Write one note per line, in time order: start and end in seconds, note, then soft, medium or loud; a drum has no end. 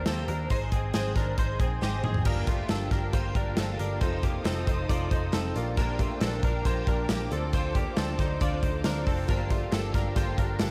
0.06 0.24 D#2 loud
0.06 0.28 D#3 medium
0.06 0.29 G3 medium
0.06 0.29 A#3 medium
0.06 0.29 C4 medium
0.06 0.28 G4 medium
0.06 0.28 A4 medium
0.06 0.27 C5 loud
0.06 snare loud
0.06 closed hi-hat medium
0.28 0.46 D#2 loud
0.28 0.50 A#3 soft
0.28 0.51 D4 soft
0.28 0.51 G4 medium
0.28 0.50 A#4 medium
0.28 0.50 C5 medium
0.28 closed hi-hat medium
0.50 0.68 G#1 medium
0.50 0.72 G#3 medium
0.50 0.72 D#4 medium
0.50 0.73 D#4 medium
0.50 0.72 G#4 loud
0.50 0.72 C5 medium
0.50 0.70 C5 loud
0.50 kick loud
0.50 closed hi-hat medium
0.72 0.90 G#1 medium
0.72 0.94 C4 medium
0.72 0.93 D#4 soft
0.72 0.93 G#4 medium
0.72 0.94 G#4 soft
0.72 0.94 C5 medium
0.72 kick medium
0.72 closed hi-hat medium
0.94 1.12 G#1 loud
0.94 1.16 G#3 medium
0.94 1.17 C4 medium
0.94 1.16 D#4 medium
0.94 1.16 G#4 medium
0.94 1.16 G#4 loud
0.94 1.14 C5 loud
0.94 snare loud
0.94 closed hi-hat medium
1.16 1.34 G#1 loud
1.16 1.39 D4 medium
1.16 1.37 D#4 soft
1.16 1.38 G#4 medium
1.16 1.38 A#4 medium
1.16 1.38 C5 medium
1.16 kick medium
1.16 snare soft
1.16 closed hi-hat medium
1.37 1.56 G#1 loud
1.37 1.60 G#3 medium
1.37 1.60 D#4 medium
1.37 1.61 D#4 medium
1.37 1.60 G#4 medium
1.37 1.60 C5 medium
1.37 1.58 C5 medium
1.37 kick loud
1.37 closed hi-hat medium
1.59 1.78 A#1 medium
1.59 1.82 C4 medium
1.59 1.81 D#4 soft
1.59 1.82 G#4 medium
1.59 1.81 G#4 soft
1.59 1.82 C5 soft
1.59 kick loud
1.59 closed hi-hat medium
1.81 2.00 G#1 loud
1.81 2.04 G#3 medium
1.81 2.04 C4 medium
1.81 2.04 D#4 medium
1.81 2.04 G4 medium
1.81 2.03 G#4 medium
1.81 2.02 C5 loud
1.81 snare medium
2.03 2.22 G#1 medium
2.03 2.26 C4 medium
2.03 2.26 D#4 soft
2.03 2.26 G#4 medium
2.03 2.25 C5 medium
2.03 mid tom medium
2.14 floor tom medium
2.25 2.62 G1 loud
2.25 2.48 G2 medium
2.25 2.48 D3 medium
2.25 2.48 F3 medium
2.25 2.48 A#3 medium
2.25 2.47 D4 medium
2.25 2.48 D4 medium
2.25 2.61 F4 medium
2.25 2.61 G4 medium
2.25 4.00 G4 medium
2.25 2.46 G4 medium
2.25 2.48 A#4 medium
2.25 2.61 A#4 medium
2.25 5.52 F5 medium
2.25 4.00 G5 medium
2.25 kick loud
2.25 crash medium
2.47 2.67 F3 soft
2.47 2.70 A3 medium
2.47 2.68 A#3 soft
2.47 2.69 D4 medium
2.47 2.70 F4 medium
2.47 2.69 G4 medium
2.47 kick loud
2.47 closed hi-hat medium
2.68 2.88 G1 loud
2.68 2.91 F3 medium
2.68 2.91 A#3 medium
2.68 2.90 D4 medium
2.68 2.91 D4 medium
2.68 3.04 F4 medium
2.68 3.05 G4 medium
2.68 2.89 G4 medium
2.68 2.92 A4 medium
2.68 3.05 A#4 medium
2.68 snare loud
2.68 clap medium
2.68 closed hi-hat medium
2.91 3.09 G1 loud
2.91 3.13 F3 soft
2.91 3.13 A#3 soft
2.91 3.13 D4 soft
2.91 3.14 D4 medium
2.91 3.13 G4 medium
2.91 3.13 A#4 medium
2.91 kick loud
2.91 snare soft
2.91 closed hi-hat medium
3.12 3.31 G1 loud
3.12 3.35 G2 medium
3.12 3.36 D3 medium
3.12 3.36 F3 medium
3.12 3.35 A#3 medium
3.12 3.35 D4 medium
3.12 3.48 F4 medium
3.12 3.36 F4 medium
3.12 3.49 G4 medium
3.12 3.34 G4 loud
3.12 3.49 A#4 medium
3.12 3.36 C5 medium
3.12 kick loud
3.12 closed hi-hat medium
3.35 3.53 G1 loud
3.35 3.56 F3 soft
3.35 3.57 A#3 soft
3.35 3.58 D4 medium
3.35 3.57 D4 medium
3.35 3.57 G4 soft
3.35 3.57 A#4 medium
3.35 kick loud
3.35 closed hi-hat medium
3.57 3.76 G1 loud
3.57 3.79 F3 medium
3.57 3.80 A#3 medium
3.57 3.79 D4 medium
3.57 3.93 F4 medium
3.57 3.93 G4 medium
3.57 3.78 G4 medium
3.57 3.79 A4 medium
3.57 3.93 A4 medium
3.57 snare loud
3.57 clap medium
3.57 closed hi-hat medium
3.79 3.98 G1 medium
3.79 4.00 F3 soft
3.79 4.02 A#3 medium
3.79 4.01 D4 soft
3.79 4.02 D4 medium
3.79 4.01 G4 medium
3.79 4.01 A#4 medium
3.79 closed hi-hat medium
4.01 4.38 F1 loud
4.01 4.24 F3 medium
4.01 4.24 C4 medium
4.01 4.37 D#4 medium
4.01 4.24 D#4 medium
4.01 4.37 F4 medium
4.01 5.54 A4 medium
4.01 4.37 A4 loud
4.01 4.22 A4 medium
4.01 4.23 C5 medium
4.01 5.54 D#6 medium
4.01 kick loud
4.01 closed hi-hat medium
4.23 4.46 A#3 medium
4.23 4.45 C4 soft
4.23 4.46 D#4 soft
4.23 4.45 G4 medium
4.23 4.45 A4 medium
4.23 kick medium
4.23 closed hi-hat medium
4.44 4.63 F1 loud
4.44 4.67 F3 medium
4.44 4.68 C4 medium
4.44 4.80 D#4 medium
4.44 4.68 D#4 medium
4.44 4.81 F4 medium
4.44 4.67 A4 medium
4.44 4.81 C5 medium
4.44 snare loud
4.44 clap medium
4.44 closed hi-hat medium
4.67 4.85 F1 loud
4.67 4.89 C4 soft
4.67 4.90 D#4 medium
4.67 4.90 A4 medium
4.67 4.89 C5 medium
4.67 kick loud
4.67 closed hi-hat medium
4.89 5.07 F1 loud
4.89 5.11 F3 medium
4.89 5.12 C4 loud
4.89 5.25 D#4 medium
4.89 5.11 D#4 medium
4.89 5.25 F4 medium
4.89 5.12 F4 medium
4.89 5.25 A4 medium
4.89 5.10 A4 medium
4.89 5.11 D5 medium
4.89 kick loud
4.89 closed hi-hat medium
5.11 5.29 F1 medium
5.11 5.33 C4 soft
5.11 5.34 D#4 medium
5.11 5.33 A4 soft
5.11 5.33 C5 medium
5.11 kick loud
5.11 closed hi-hat medium
5.33 5.51 F1 loud
5.33 5.55 F3 medium
5.33 5.56 C4 medium
5.33 5.55 D#4 medium
5.33 5.56 D#4 medium
5.33 5.56 F4 medium
5.33 5.55 A4 medium
5.33 5.56 A4 medium
5.33 5.55 A4 medium
5.33 snare loud
5.33 clap medium
5.33 closed hi-hat medium
5.55 6.10 A#1 medium
5.55 5.77 F3 medium
5.55 5.78 A#3 medium
5.55 5.77 A#3 medium
5.55 6.08 D4 loud
5.55 5.78 D4 medium
5.55 5.78 F4 medium
5.55 5.77 G4 medium
5.55 6.08 G4 medium
5.55 7.29 A#4 medium
5.55 6.09 A#4 loud
5.55 7.29 G5 medium
5.55 9.25 D6 medium
5.55 closed hi-hat medium
5.77 5.99 A#2 medium
5.77 5.99 D3 medium
5.77 6.00 F3 medium
5.77 5.99 A#3 medium
5.77 6.00 D4 medium
5.77 5.98 D4 medium
5.77 5.97 G4 medium
5.77 5.99 A#4 medium
5.77 kick loud
5.77 closed hi-hat medium
5.99 6.20 F3 soft
5.99 6.22 A3 medium
5.99 6.21 A#3 medium
5.99 6.21 D4 medium
5.99 6.21 F4 medium
5.99 6.21 G4 medium
5.99 kick medium
5.99 closed hi-hat medium
6.21 6.39 A#1 loud
6.21 6.43 F3 medium
6.21 6.43 A#3 medium
6.21 6.56 D4 medium
6.21 6.44 D4 medium
6.21 6.43 D4 medium
6.21 6.57 G4 medium
6.21 6.41 G4 medium
6.21 6.43 A4 medium
6.21 6.57 A#4 medium
6.21 snare loud
6.21 clap medium
6.21 closed hi-hat medium
6.43 6.61 A#1 loud
6.43 6.64 F3 soft
6.43 6.65 A#3 medium
6.43 6.65 D4 medium
6.43 6.66 D4 medium
6.43 6.65 G4 medium
6.43 6.65 A#4 medium
6.43 kick loud
6.43 closed hi-hat medium
6.65 6.83 A#1 medium
6.65 6.87 A#2 medium
6.65 6.87 D3 medium
6.65 6.87 F3 medium
6.65 6.87 A#3 medium
6.65 7.00 D4 medium
6.65 6.87 D4 loud
6.65 6.88 F4 medium
6.65 7.01 G4 medium
6.65 6.86 G4 loud
6.65 7.01 A#4 medium
6.65 6.88 C5 medium
6.65 kick loud
6.65 closed hi-hat medium
6.87 7.05 A#1 loud
6.87 7.08 F3 soft
6.87 7.09 A#3 soft
6.87 7.09 D4 soft
6.87 7.10 D4 medium
6.87 7.09 G4 medium
6.87 7.10 A#4 medium
6.87 kick medium
6.87 closed hi-hat medium
7.08 7.28 A#1 loud
7.08 7.31 F3 medium
7.08 7.32 A#3 medium
7.08 7.29 D4 medium
7.08 7.31 D4 medium
7.08 7.31 G4 medium
7.08 7.30 G4 medium
7.08 7.31 A#4 medium
7.08 snare loud
7.08 clap medium
7.08 closed hi-hat loud
7.30 7.85 D2 medium
7.30 7.54 C4 soft
7.30 7.53 C4 soft
7.30 7.84 D4 medium
7.30 7.54 D4 medium
7.30 7.84 F4 medium
7.30 7.53 A4 medium
7.30 7.54 A4 medium
7.30 9.26 C5 medium
7.30 7.85 C5 loud
7.30 10.71 F5 medium
7.30 closed hi-hat medium
7.53 7.75 D3 medium
7.53 7.75 F3 medium
7.53 7.76 C4 medium
7.53 7.75 D4 medium
7.53 7.75 F4 medium
7.53 7.74 A4 medium
7.53 7.76 C5 medium
7.53 kick medium
7.53 closed hi-hat medium
7.75 7.98 A#3 medium
7.75 7.97 C4 soft
7.75 7.97 D4 medium
7.75 7.97 G4 medium
7.75 7.97 A4 medium
7.75 kick medium
7.75 closed hi-hat medium
7.97 8.15 D2 loud
7.97 8.19 F3 medium
7.97 8.19 C4 medium
7.97 8.20 C4 medium
7.97 8.32 D4 medium
7.97 8.19 D4 medium
7.97 8.32 F4 medium
7.97 8.19 A4 medium
7.97 8.17 A4 medium
7.97 8.33 C5 loud
7.97 snare loud
7.97 clap medium
7.97 closed hi-hat medium
8.18 8.37 D2 loud
8.18 8.40 C4 soft
8.18 8.41 D4 medium
8.18 8.42 D#4 medium
8.18 8.41 A4 medium
8.18 8.41 C5 medium
8.18 kick medium
8.18 snare soft
8.18 closed hi-hat medium
8.40 8.59 D2 medium
8.40 8.63 D3 medium
8.40 8.63 F3 medium
8.40 8.63 C4 medium
8.40 8.76 D4 medium
8.40 8.62 D4 medium
8.40 8.76 F4 medium
8.40 8.64 F4 medium
8.40 8.61 A4 medium
8.40 8.77 C5 medium
8.40 8.63 D5 medium
8.40 kick loud
8.40 closed hi-hat medium
8.62 8.81 D2 medium
8.62 8.84 C4 soft
8.62 8.85 D4 medium
8.62 8.85 D#4 medium
8.62 8.84 A4 medium
8.62 8.85 C5 medium
8.62 kick medium
8.62 closed hi-hat medium
8.84 9.03 D2 loud
8.84 9.06 F3 medium
8.84 9.07 C4 medium
8.84 9.20 D4 medium
8.84 9.07 D4 medium
8.84 9.06 D4 medium
8.84 9.20 F4 medium
8.84 9.05 A4 medium
8.84 9.07 A#4 medium
8.84 9.20 C5 medium
8.84 snare loud
8.84 clap medium
8.84 closed hi-hat loud
9.06 9.25 F1 medium
9.06 9.29 C4 medium
9.06 9.29 D4 medium
9.06 9.28 A4 medium
9.06 9.29 A4 medium
9.06 kick medium
9.06 open hi-hat medium
9.28 9.65 G1 loud
9.28 9.50 G2 medium
9.28 9.51 D3 medium
9.28 9.51 F3 medium
9.28 9.50 A#3 medium
9.28 9.49 D4 medium
9.28 9.51 D4 medium
9.28 9.64 F4 medium
9.28 10.71 G4 medium
9.28 9.64 G4 medium
9.28 9.48 G4 medium
9.28 9.51 A#4 medium
9.28 9.64 A#4 medium
9.28 10.71 G5 medium
9.28 kick loud
9.28 closed hi-hat medium
9.50 9.71 F3 soft
9.50 9.73 A3 medium
9.50 9.72 A#3 soft
9.50 9.73 D4 medium
9.50 9.73 F4 medium
9.50 9.72 G4 medium
9.50 kick medium
9.50 closed hi-hat medium
9.72 9.90 G1 medium
9.72 9.94 F3 medium
9.72 9.95 A#3 medium
9.72 9.94 D4 medium
9.72 10.07 F4 medium
9.72 10.08 G4 medium
9.72 9.93 G4 medium
9.72 9.94 A4 medium
9.72 10.08 A4 loud
9.72 snare loud
9.72 clap medium
9.72 closed hi-hat medium
9.94 10.12 G1 loud
9.94 10.15 F3 medium
9.94 10.16 A#3 medium
9.94 10.16 D4 medium
9.94 10.17 D4 medium
9.94 10.16 G4 medium
9.94 10.16 A#4 medium
9.94 kick loud
9.94 snare soft
9.94 closed hi-hat medium
10.15 10.34 G1 loud
10.15 10.38 G2 medium
10.15 10.38 D3 medium
10.15 10.39 F3 medium
10.15 10.39 A#3 loud
10.15 10.38 D4 loud
10.15 10.51 F4 medium
10.15 10.39 F4 medium
10.15 10.52 G4 medium
10.15 10.37 G4 medium
10.15 10.52 A4 medium
10.15 10.38 C5 medium
10.15 kick loud
10.15 closed hi-hat medium
10.38 10.56 G1 medium
10.38 10.59 F3 medium
10.38 10.60 A#3 soft
10.38 10.61 D4 medium
10.38 10.60 D4 medium
10.38 10.60 G4 medium
10.38 10.61 A#4 medium
10.38 kick loud
10.38 closed hi-hat medium
10.59 10.71 G1 loud
10.59 10.71 F3 medium
10.59 10.71 A#3 medium
10.59 10.71 D4 medium
10.59 10.71 F4 medium
10.59 10.71 G4 medium
10.59 10.71 A4 medium
10.59 10.71 A#4 medium
10.59 snare loud
10.59 clap medium
10.59 closed hi-hat loud